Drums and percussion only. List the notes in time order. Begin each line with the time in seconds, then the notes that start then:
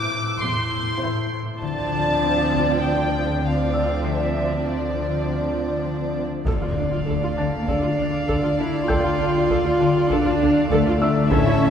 1.62 taiko
2.53 taiko
6.47 taiko
7.07 taiko
7.68 taiko
8.29 taiko
8.90 taiko
9.50 taiko
10.10 taiko
10.71 taiko
11.31 taiko